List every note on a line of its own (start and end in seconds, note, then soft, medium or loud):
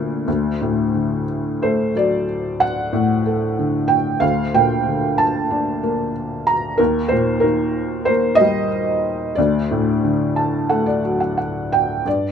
0.00 0.23 D2 medium
0.00 0.24 A#2 medium
0.00 0.26 D3 soft
0.00 1.23 D5 medium
0.27 2.89 D2 medium
0.61 1.91 A2 soft
0.94 2.24 D3 soft
1.62 2.90 A3 soft
1.62 1.93 C5 medium
1.95 3.22 F#3 soft
1.95 2.64 D5 medium
2.60 3.94 F#5 medium
2.93 4.18 A2 medium
3.26 4.20 A4 soft
3.59 4.21 D3 soft
3.88 4.19 G5 medium
4.20 6.75 D2 medium
4.20 4.54 F5 medium
4.54 5.79 A#2 medium
4.54 5.21 G5 medium
4.87 6.12 D3 soft
5.18 6.51 A5 medium
5.51 6.75 D4 medium
5.83 6.76 A#3 medium
6.47 6.80 A#5 medium
6.78 9.33 D#2 medium
6.78 7.11 A#4 medium
7.08 8.36 A#2 medium
7.08 7.43 C5 medium
7.40 8.68 D#3 medium
7.40 8.08 A#4 medium
8.05 9.33 A#3 medium
8.05 8.40 C5 medium
8.35 9.31 D#5 loud
8.40 9.35 G3 soft
9.35 12.02 D2 medium
9.35 10.85 D5 medium
9.71 11.00 A2 medium
10.04 11.34 D3 soft
10.36 10.67 A5 medium
10.70 12.02 A3 medium
10.70 10.85 F#5 medium
10.86 11.18 D5 medium
11.04 12.03 F#3 soft
11.20 11.36 F#5 medium
11.38 12.01 F#5 medium
11.72 12.07 G5 medium
12.05 12.32 G2 soft
12.05 12.32 D5 medium